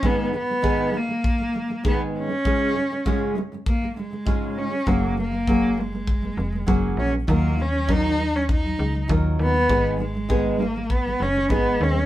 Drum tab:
BD |o-o-o-o-|o-o-o-o-|o-o-o-o-|o-o-o-o-|

BD |o-o-o-o-|